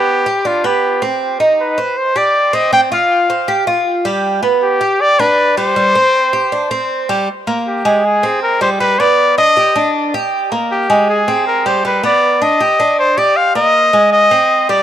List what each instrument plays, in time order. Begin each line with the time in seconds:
Already playing: cuban tres B3, trumpet G4
0.26 cuban tres G4
0.45 cuban tres D4, trumpet F4
0.64 cuban tres B3, trumpet G4
1.02 cuban tres C4
1.40 cuban tres D#4
1.61 trumpet B4
1.78 cuban tres C5
1.98 trumpet C5
2.16 cuban tres G4, trumpet D5
2.53 cuban tres C4, trumpet D#5
2.73 cuban tres C4, trumpet G5
2.92 cuban tres F4, trumpet F5
3.30 cuban tres C5
3.48 cuban tres G4
3.67 cuban tres F4
4.05 cuban tres G3
4.43 cuban tres B3
4.63 trumpet G4
4.81 cuban tres G4
5.01 trumpet D5
5.19 cuban tres D4, trumpet B4
5.57 cuban tres G3, trumpet C5
5.76 cuban tres G3
5.95 cuban tres C4
6.33 cuban tres G4
6.52 cuban tres D4
6.71 cuban tres C4
7.09 cuban tres G3
7.47 cuban tres A#3
7.68 trumpet G4
7.85 cuban tres G#3
8.05 trumpet G#4
8.23 cuban tres C4
8.43 trumpet A#4
8.61 cuban tres G3, trumpet C5
8.80 cuban tres G3, trumpet B4
9.00 cuban tres B3, trumpet D5
9.38 cuban tres D4, trumpet D#5
9.57 cuban tres G4
9.76 cuban tres D4
10.14 cuban tres G4
10.52 cuban tres A#3
10.72 trumpet G4
10.90 cuban tres G#3
11.10 trumpet G#4
11.28 cuban tres C4
11.47 trumpet A#4
11.66 cuban tres G3, trumpet C5
11.85 cuban tres G3, trumpet B4
12.03 cuban tres B3, trumpet D5
12.42 cuban tres D4, trumpet D#5
12.60 cuban tres G4
12.80 cuban tres D4
12.99 trumpet C5
13.18 cuban tres G4, trumpet D5
13.37 trumpet F5
13.55 cuban tres A#3, trumpet D#5
13.93 cuban tres G#3
14.13 trumpet D#5
14.31 cuban tres C4
14.69 cuban tres G3, trumpet D5